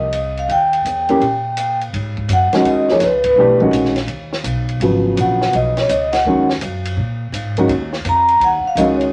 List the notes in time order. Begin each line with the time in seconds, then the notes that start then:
Already playing: C2 D#5
0.12 D#5, hi-hat pedal, ride
0.37 F5, ride
0.49 D#2 G5, ride
0.73 ride
0.85 E2, hi-hat pedal, ride
1.09 A#3 C#4 E4 G4, ride
1.20 A#2, ride
1.57 hi-hat pedal, ride
1.81 ride
1.93 G#2, ride
2.17 kick
2.28 F#2, hi-hat pedal, ride
2.33 F#5
2.52 D#3 G#3 C#4 F#4, muted upright bass stroke, snare, ride
2.64 D#2, ride
2.68 D#5
2.88 F3 A#3 D#4 G#4 C#5, snare
3.00 C#2 B4, snare, hi-hat pedal, ride
3.24 B4, kick, ride
3.36 B1 E3 A3 D4 G4
3.60 D#3 G#3 C#4 F#4, kick
3.71 A#1, hi-hat pedal, ride
3.85 snare
3.96 snare, ride
4.07 D#2, ride
4.33 snare
4.44 B1, hi-hat pedal, ride
4.69 ride
4.80 G#1 C#3 F3 F#3 B3, ride
5.17 A#1 F#5, hi-hat pedal, ride
5.42 snare
5.53 B1 D#5, ride
5.77 C#5, snare, ride
5.89 C#2 D#5, hi-hat pedal, ride
6.13 F#5, snare, ride
6.25 D#2 D#3 G#3 C#4 F#4
6.49 snare
6.61 F#2, hi-hat pedal, ride
6.85 ride
6.97 A#2
7.32 G#2, hi-hat pedal, ride
7.57 D#3 G#3 C#4 F#4, kick, ride
7.68 D#2, ride
7.93 snare
8.05 F2, hi-hat pedal, ride
8.09 A#5
8.28 ride
8.40 D#2, ride
8.44 F#5
8.64 F5, muted upright bass stroke
8.75 C#2 D#3 G#3 C#4 F#4 D#5, hi-hat pedal, ride
8.96 C#5 D#5
9.01 ride